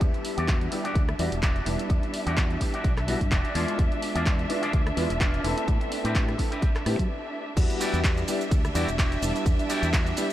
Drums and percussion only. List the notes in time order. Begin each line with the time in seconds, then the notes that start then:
0.01 kick, closed hi-hat
0.14 closed hi-hat
0.25 open hi-hat
0.38 closed hi-hat
0.48 kick, clap, closed hi-hat
0.61 closed hi-hat
0.72 open hi-hat
0.85 closed hi-hat
0.95 kick, closed hi-hat
1.09 cross-stick, closed hi-hat
1.19 open hi-hat
1.32 closed hi-hat
1.43 kick, clap, closed hi-hat
1.56 closed hi-hat
1.66 open hi-hat
1.79 closed hi-hat
1.90 kick, closed hi-hat
2.03 closed hi-hat
2.14 open hi-hat
2.27 closed hi-hat
2.37 kick, clap, closed hi-hat
2.50 closed hi-hat
2.61 kick, open hi-hat
2.74 closed hi-hat
2.84 kick, closed hi-hat
2.97 cross-stick, clap, closed hi-hat
3.08 open hi-hat
3.21 kick, closed hi-hat
3.32 kick, clap, closed hi-hat
3.45 closed hi-hat
3.55 open hi-hat
3.68 closed hi-hat
3.79 kick, closed hi-hat
3.92 closed hi-hat
4.02 open hi-hat
4.16 closed hi-hat
4.26 kick, clap, closed hi-hat
4.39 closed hi-hat
4.50 open hi-hat
4.63 closed hi-hat
4.73 kick, closed hi-hat
4.87 cross-stick, closed hi-hat
4.97 open hi-hat
5.10 closed hi-hat
5.21 kick, clap, closed hi-hat
5.34 closed hi-hat
5.44 open hi-hat
5.58 closed hi-hat
5.68 kick, closed hi-hat
5.81 closed hi-hat
5.92 open hi-hat
6.05 closed hi-hat
6.15 kick, clap, closed hi-hat
6.29 cross-stick, closed hi-hat
6.39 kick, open hi-hat
6.52 closed hi-hat
6.62 kick, closed hi-hat
6.76 cross-stick, clap, closed hi-hat
6.86 cross-stick, open hi-hat
6.99 kick, closed hi-hat
7.57 kick, closed hi-hat, crash, ride, cabasa
7.70 closed hi-hat, cabasa
7.81 open hi-hat, cabasa
7.94 closed hi-hat, cabasa
8.04 kick, clap, closed hi-hat, ride, cabasa
8.18 closed hi-hat, cabasa
8.28 open hi-hat, cabasa
8.41 closed hi-hat, cabasa
8.51 kick, closed hi-hat, ride, cabasa
8.65 cross-stick, closed hi-hat, cabasa
8.75 open hi-hat, cabasa
8.88 closed hi-hat, cabasa
8.99 kick, clap, closed hi-hat, ride, cabasa
9.12 closed hi-hat, cabasa
9.23 open hi-hat, cabasa
9.36 closed hi-hat, cabasa
9.46 kick, closed hi-hat, ride, cabasa
9.59 closed hi-hat, cabasa
9.70 open hi-hat, cabasa
9.83 closed hi-hat, cabasa
9.93 kick, clap, closed hi-hat, ride, cabasa
10.07 closed hi-hat, cabasa
10.17 open hi-hat, cabasa